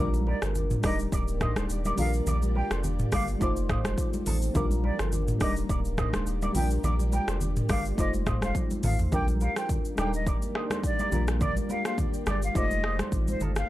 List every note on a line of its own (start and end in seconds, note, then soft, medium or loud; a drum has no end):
0.00 0.34 A#1 loud
0.00 0.80 G3 medium
0.00 0.82 D4 medium
0.00 0.84 F4 medium
0.00 1.96 G4 medium
0.00 0.84 A#4 medium
0.00 3.37 D5 medium
0.14 high conga medium
0.14 shaker medium
0.27 0.37 G4 medium
0.27 0.36 A#4 medium
0.27 0.41 D5 medium
0.27 high conga medium
0.42 0.76 G1 medium
0.42 0.51 A4 medium
0.42 0.50 C5 medium
0.42 cross-stick medium
0.42 shaker soft
0.55 low conga medium
0.55 shaker medium
0.71 mid tom medium
0.71 shaker soft
0.81 1.07 D#1 loud
0.81 1.94 G3 medium
0.81 3.38 A#3 medium
0.81 1.95 D4 medium
0.81 1.96 D#4 medium
0.81 0.94 A#4 medium
0.81 0.94 D5 medium
0.81 0.98 D#5 medium
0.81 kick loud
0.81 cross-stick medium
0.81 open hi-hat medium
0.81 high conga medium
0.81 shaker medium
0.86 1.97 A#4 medium
0.99 shaker medium
1.12 1.48 D1 loud
1.12 1.23 A#4 medium
1.12 1.22 D5 medium
1.12 kick loud
1.12 shaker medium
1.28 shaker medium
1.41 1.51 C5 medium
1.41 1.51 D#5 medium
1.41 kick medium
1.41 cross-stick medium
1.41 mid tom medium
1.41 shaker soft
1.56 1.67 D#1 medium
1.56 1.65 A4 medium
1.56 1.65 C5 medium
1.56 cross-stick medium
1.56 high conga medium
1.56 shaker soft
1.70 1.93 D#1 medium
1.70 shaker medium
1.85 1.94 A#4 medium
1.85 1.93 D5 medium
1.85 high conga medium
1.85 shaker medium
1.95 2.21 A#1 loud
1.95 3.37 G3 medium
1.95 3.38 D4 medium
1.95 3.38 F4 medium
1.95 3.39 G4 medium
1.95 2.08 G4 medium
1.95 2.08 A#4 medium
1.95 2.12 F5 medium
1.95 open hi-hat medium
1.95 low conga medium
1.95 shaker medium
2.00 2.06 A4 medium
2.07 3.43 A#4 medium
2.13 shaker medium
2.27 2.63 A#1 loud
2.27 2.37 A#4 medium
2.27 2.36 D5 medium
2.27 low conga medium
2.27 shaker medium
2.42 high conga medium
2.42 shaker medium
2.55 2.65 G4 medium
2.55 2.65 A#4 medium
2.55 2.69 G5 medium
2.55 high conga medium
2.71 3.05 F1 medium
2.71 2.79 A4 medium
2.71 2.79 C5 medium
2.71 cross-stick medium
2.71 shaker soft
2.84 low conga medium
2.84 shaker medium
2.99 mid tom medium
2.99 shaker medium
3.12 3.36 G1 medium
3.12 3.22 A#4 medium
3.12 3.22 D5 medium
3.12 3.26 F5 medium
3.12 kick medium
3.12 cross-stick loud
3.12 open hi-hat medium
3.12 high conga medium
3.12 shaker medium
3.28 shaker medium
3.39 3.77 F1 loud
3.39 4.52 A3 medium
3.39 4.53 D#4 medium
3.39 4.53 F4 medium
3.39 3.51 A4 medium
3.39 3.51 D5 medium
3.39 kick medium
3.39 shaker medium
3.44 4.54 C5 medium
3.57 shaker medium
3.69 3.80 C5 medium
3.69 3.79 D#5 medium
3.69 kick loud
3.69 cross-stick medium
3.69 mid tom medium
3.69 shaker soft
3.85 3.96 F1 medium
3.85 3.94 A4 medium
3.85 3.93 C5 medium
3.85 cross-stick medium
3.85 high conga medium
3.85 shaker soft
3.98 kick loud
3.98 shaker medium
4.13 high conga medium
4.13 shaker medium
4.26 4.50 A1 medium
4.26 4.37 F4 medium
4.26 4.36 A4 medium
4.26 open hi-hat medium
4.26 low conga medium
4.26 shaker medium
4.42 shaker medium
4.54 4.91 A#1 loud
4.54 5.37 G3 medium
4.54 6.53 A#3 medium
4.54 5.39 D4 medium
4.54 5.41 F4 medium
4.54 4.65 A#4 medium
4.54 5.42 A#4 medium
4.54 4.65 D5 medium
4.54 kick loud
4.54 low conga medium
4.54 shaker medium
4.71 high conga medium
4.71 shaker medium
4.84 4.94 G4 medium
4.84 4.93 A#4 medium
4.84 4.98 D5 medium
4.84 high conga medium
4.99 5.33 G1 medium
4.99 5.08 A4 medium
4.99 5.07 C5 medium
4.99 cross-stick medium
4.99 shaker soft
5.12 low conga medium
5.12 shaker medium
5.28 mid tom medium
5.28 shaker medium
5.38 5.64 D#1 loud
5.38 6.51 G3 medium
5.38 6.52 D4 medium
5.38 6.53 D#4 medium
5.38 7.95 G4 medium
5.38 5.51 A#4 medium
5.38 5.50 D5 medium
5.38 7.96 D5 medium
5.38 5.55 D#5 medium
5.38 kick medium
5.38 cross-stick medium
5.38 open hi-hat medium
5.38 high conga medium
5.38 shaker medium
5.43 6.54 A#4 medium
5.56 shaker medium
5.69 6.06 D1 loud
5.69 5.79 A#4 medium
5.69 5.79 D5 medium
5.69 kick medium
5.69 shaker medium
5.85 shaker medium
5.98 6.08 C5 medium
5.98 6.08 D#5 medium
5.98 kick loud
5.98 cross-stick medium
5.98 mid tom medium
5.98 shaker soft
6.13 6.24 D#1 medium
6.13 6.22 A4 medium
6.13 6.22 C5 medium
6.13 cross-stick medium
6.13 high conga medium
6.13 shaker soft
6.26 6.50 D#1 loud
6.26 shaker medium
6.42 6.51 A#4 medium
6.42 6.50 D5 medium
6.42 high conga medium
6.42 shaker medium
6.53 6.78 A#1 loud
6.53 7.94 G3 medium
6.53 7.96 A#3 medium
6.53 6.62 C4 soft
6.53 7.96 F4 medium
6.53 6.65 G4 medium
6.53 6.65 A#4 medium
6.53 6.69 G5 medium
6.53 open hi-hat medium
6.53 low conga medium
6.53 shaker medium
6.58 7.98 D4 medium
6.58 7.96 A#4 medium
6.71 shaker medium
6.84 7.20 A#1 loud
6.84 6.94 A#4 medium
6.84 6.93 D5 medium
6.84 low conga medium
6.84 shaker medium
6.99 high conga medium
6.99 shaker medium
7.12 7.22 G4 medium
7.12 7.22 A#4 medium
7.12 7.27 G5 medium
7.12 high conga medium
7.12 shaker medium
7.28 7.62 F1 medium
7.28 7.36 A4 medium
7.28 7.36 C5 medium
7.28 cross-stick medium
7.28 shaker soft
7.41 low conga medium
7.41 shaker medium
7.56 mid tom medium
7.56 shaker soft
7.69 7.93 G1 medium
7.69 7.80 A#4 medium
7.69 7.79 D5 medium
7.69 7.84 F5 medium
7.69 kick loud
7.69 cross-stick medium
7.69 open hi-hat medium
7.69 high conga medium
7.69 shaker medium
7.85 shaker medium
7.95 8.34 F1 loud
7.95 9.09 A3 medium
7.95 9.10 D#4 medium
7.95 9.10 F4 medium
7.95 8.08 A4 medium
7.95 8.08 D5 medium
7.95 8.12 D#5 medium
7.95 kick medium
7.95 shaker medium
8.00 9.11 C5 medium
8.14 high conga medium
8.14 shaker medium
8.26 8.37 C5 medium
8.26 8.36 D#5 medium
8.26 kick loud
8.26 cross-stick medium
8.26 mid tom medium
8.26 shaker soft
8.42 8.53 F1 medium
8.42 8.51 A4 medium
8.42 8.50 C5 medium
8.42 8.54 F5 medium
8.42 cross-stick medium
8.42 high conga medium
8.42 shaker soft
8.55 kick loud
8.55 high tom medium
8.55 shaker medium
8.71 high conga medium
8.71 shaker medium
8.83 9.07 A1 loud
8.83 8.94 F4 medium
8.83 8.93 A4 medium
8.83 8.98 F5 medium
8.83 mid tom medium
8.83 open hi-hat medium
8.83 low conga medium
8.83 shaker medium
8.99 floor tom medium
8.99 shaker medium
9.11 9.48 A#1 loud
9.11 9.94 G3 medium
9.11 12.52 A#3 medium
9.11 9.96 D4 medium
9.11 9.98 F4 medium
9.11 11.10 G4 medium
9.11 9.23 A#4 medium
9.11 9.99 A#4 medium
9.11 12.52 D5 medium
9.11 9.22 D5 medium
9.11 9.26 G5 loud
9.11 kick loud
9.11 low conga medium
9.11 shaker medium
9.28 high conga medium
9.28 shaker medium
9.41 9.51 G4 medium
9.41 9.51 A#4 medium
9.41 9.55 F5 medium
9.41 high conga medium
9.41 shaker medium
9.56 9.65 A4 medium
9.56 9.64 C5 medium
9.56 9.68 G5 medium
9.56 cross-stick medium
9.56 shaker soft
9.69 kick medium
9.69 low conga medium
9.69 shaker medium
9.85 shaker soft
9.96 10.34 D#1 loud
9.96 11.09 G3 medium
9.96 11.10 D4 medium
9.96 11.10 D#4 medium
9.96 10.08 A#4 medium
9.96 10.08 D5 medium
9.96 10.12 G5 medium
9.96 cross-stick medium
9.96 high conga medium
9.96 shaker medium
10.01 10.06 A4 medium
10.07 11.14 A#4 medium
10.13 10.26 D#5 medium
10.13 shaker medium
10.27 10.37 A#4 medium
10.27 10.36 D5 medium
10.27 kick loud
10.27 shaker medium
10.42 high conga medium
10.42 shaker medium
10.55 10.65 C5 medium
10.55 10.65 D#5 medium
10.55 cross-stick medium
10.70 10.79 A4 medium
10.70 10.79 C5 medium
10.70 cross-stick medium
10.70 high conga medium
10.70 shaker soft
10.84 11.26 D5 medium
10.84 kick loud
10.84 shaker medium
10.99 11.08 A#4 medium
10.99 11.07 D5 medium
10.99 high conga medium
10.99 shaker soft
11.10 11.59 A#1 loud
11.10 12.51 G3 medium
11.10 12.52 D4 medium
11.10 12.53 F4 medium
11.10 12.54 G4 medium
11.10 11.23 G4 medium
11.10 11.22 A#4 medium
11.10 low conga medium
11.10 shaker medium
11.15 12.54 A#4 medium
11.28 cross-stick medium
11.28 shaker medium
11.41 11.51 A#4 medium
11.41 11.51 D5 medium
11.41 11.55 D5 medium
11.41 kick loud
11.41 low conga medium
11.41 shaker medium
11.57 high conga medium
11.57 shaker medium
11.70 11.80 G4 medium
11.70 11.79 A#4 medium
11.70 11.84 F5 medium
11.70 high conga medium
11.70 shaker medium
11.85 11.94 A4 medium
11.85 11.93 C5 medium
11.85 11.97 F5 medium
11.85 cross-stick medium
11.85 shaker soft
11.98 kick medium
11.98 low conga medium
11.98 shaker medium
12.14 shaker soft
12.26 12.50 G1 medium
12.26 12.37 A#4 medium
12.26 12.36 D5 medium
12.26 12.41 D5 medium
12.26 cross-stick medium
12.26 high conga medium
12.26 shaker medium
12.42 12.54 F5 medium
12.42 shaker medium
12.53 13.02 F1 loud
12.53 12.61 G#3 medium
12.53 13.67 D#4 medium
12.53 13.68 F4 medium
12.53 12.65 A4 medium
12.53 12.65 D5 medium
12.53 12.98 D#5 loud
12.53 kick loud
12.53 shaker medium
12.58 13.69 A3 medium
12.58 13.69 C5 medium
12.71 high conga medium
12.71 shaker medium
12.84 12.94 C5 medium
12.84 12.93 D#5 medium
12.84 cross-stick medium
12.99 13.08 A4 medium
12.99 13.07 C5 medium
12.99 cross-stick medium
12.99 high conga medium
12.99 shaker soft
13.12 13.36 A1 medium
13.12 kick medium
13.12 shaker medium
13.28 13.40 C5 medium
13.28 high conga medium
13.28 shaker medium
13.40 13.64 G1 medium
13.40 13.51 F4 medium
13.40 13.51 A4 medium
13.40 low conga medium
13.40 shaker medium
13.56 13.68 F5 medium
13.56 cross-stick medium
13.56 shaker medium